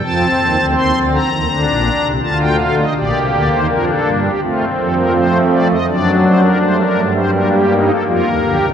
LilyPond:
<<
  \new Staff \with { instrumentName = "Pipe organ" } { \time 4/4 \key bes \major \tempo 4 = 82 << { a''4 c'''8 bes''4. a''16 g''16 f''16 ees''16 | \key g \minor d''8 d''16 c''16 bes'16 a'8 g'16 f'8 a'16 bes'16 c''8 d''16 ees''16 | d''8 c''16 bes'16 c''16 bes'8 c''16 bes'16 g'8 a'16 bes'4 | } \\ { c'2 d'4 f'4 | g'4 d'4 r2 | d'2 d'8 ees'8 f'8 g'8 | } >> }
  \new Staff \with { instrumentName = "Pipe organ" } { \clef bass \time 4/4 \key bes \major << { r1 | \key g \minor bes2 c'4 a4 | r4 g8 a8 bes2 | } \\ { <f, f>8 <ees, ees>16 <d, d>16 <ees, ees>16 <d, d>8 <ees, ees>16 <d, d>16 <bes,, bes,>8 <c, c>16 <d, d>4 | <bes,, bes,>16 <c, c>16 <d, d>16 <ees, ees>16 <f, f>8 <g, g>8 a8 <f, f>4. | <fis, fis>4 a8 <g, g>4. <f, f>16 <ees, ees>16 <d, d>16 <c, c>16 | } >> }
>>